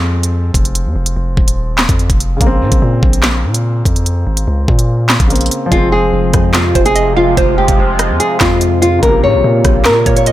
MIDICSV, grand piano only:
0, 0, Header, 1, 2, 480
1, 0, Start_track
1, 0, Key_signature, -4, "minor"
1, 0, Tempo, 413793
1, 872, Time_signature, 4, 2, 24, 8
1, 11974, End_track
2, 0, Start_track
2, 0, Title_t, "Grand piano"
2, 0, Program_c, 0, 0
2, 0, Control_c, 0, 64, 127
2, 0, Note_on_c, 0, 53, 65
2, 0, Note_on_c, 0, 56, 64
2, 0, Note_on_c, 0, 60, 68
2, 2713, Note_off_c, 0, 53, 0
2, 2741, Note_off_c, 0, 56, 0
2, 2746, Note_on_c, 0, 49, 66
2, 2770, Note_off_c, 0, 60, 0
2, 2802, Note_on_c, 0, 58, 65
2, 2809, Control_c, 0, 64, 0
2, 2859, Note_on_c, 0, 60, 77
2, 3003, Control_c, 0, 64, 127
2, 6082, Note_off_c, 0, 49, 0
2, 6111, Note_off_c, 0, 58, 0
2, 6121, Note_on_c, 0, 49, 50
2, 6139, Note_off_c, 0, 60, 0
2, 6149, Note_on_c, 0, 58, 47
2, 6177, Note_on_c, 0, 60, 55
2, 6566, Note_on_c, 0, 53, 66
2, 6616, Note_off_c, 0, 49, 0
2, 6622, Note_on_c, 0, 56, 66
2, 6630, Note_off_c, 0, 58, 0
2, 6644, Note_off_c, 0, 60, 0
2, 6649, Control_c, 0, 64, 0
2, 6679, Note_on_c, 0, 60, 74
2, 6834, Control_c, 0, 64, 127
2, 10393, Note_off_c, 0, 53, 0
2, 10421, Note_off_c, 0, 56, 0
2, 10426, Note_on_c, 0, 49, 66
2, 10449, Note_off_c, 0, 60, 0
2, 10482, Note_on_c, 0, 58, 65
2, 10490, Control_c, 0, 64, 0
2, 10539, Note_on_c, 0, 48, 79
2, 10723, Control_c, 0, 64, 127
2, 11974, Note_off_c, 0, 48, 0
2, 11974, Note_off_c, 0, 49, 0
2, 11974, Note_off_c, 0, 58, 0
2, 11974, End_track
0, 0, End_of_file